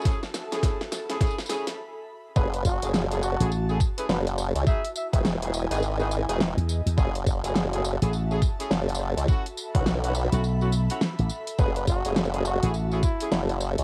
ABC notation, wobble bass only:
X:1
M:4/4
L:1/16
Q:"Swing 16ths" 1/4=104
K:F#dor
V:1 name="Wobble bass" clef=bass
z16 | F,,,3 F,,,4 z4 z F,,,3 C,, | z3 E,,,4 G,,,4 E,,,2 z3 | F,,,3 F,,,4 z4 z F,,,3 C,, |
z3 B,,,4 z8 z | F,,,3 F,,,4 z4 z F,,,3 C,, |]